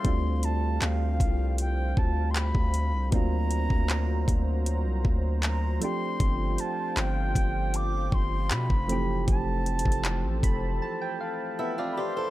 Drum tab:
HH |x-----x-----x-----x-----x-----------x-----x-----|x-----x-----x-----x-----x-----------x-----x-----|x-----x-----x-----x-----x-----------x-----x-----|x-----x-x-x-x-----x-----------------------------|
CP |------------x-----------------------x-----------|------------x-----------------------x-----------|------------x-----------------------x-----------|------------x-----------------------------------|
BD |o-----------------o-----------o--------o--------|o--------o--------o-----------o-----------------|o-----------------o-----------o--------o--------|o--------o--------o-----------------------------|